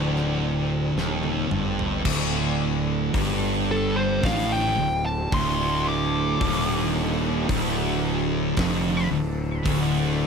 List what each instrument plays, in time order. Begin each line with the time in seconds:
Already playing: fingered electric bass D1, distorted electric guitar D2, synth drone D3 C4 A4, lead electric guitar D5
0.16 snare
0.95 fingered electric bass D#1, distorted electric guitar D#2, snare
1.23 high tom
1.51 fingered electric bass G1, distorted electric guitar G2, mid tom
1.79 floor tom
2.03 fingered electric bass D1, distorted electric guitar D2, synth drone D3 D4 A4, kick, crash
3.13 fingered electric bass G1, distorted electric guitar G2, kick, open hi-hat
3.71 lead electric guitar A4
3.97 lead electric guitar C5
4.23 fingered electric bass A1, distorted electric guitar A2, lead electric guitar F5, kick, snare, open hi-hat
4.52 lead electric guitar G5
4.78 fingered electric bass D1, distorted electric guitar D2
5.06 lead electric guitar A5
5.32 fingered electric bass D1, distorted electric guitar D2, lead electric guitar C6, kick, open hi-hat
5.88 lead electric guitar D6
6.41 fingered electric bass D#1, distorted electric guitar D#2, kick, open hi-hat
7.49 fingered electric bass D1, distorted electric guitar D2, kick, open hi-hat
8.57 fingered electric bass F1, distorted electric guitar F2, kick, snare, open hi-hat
9.10 fingered electric bass D1, distorted electric guitar D2
9.64 fingered electric bass D1, distorted electric guitar D2, kick, open hi-hat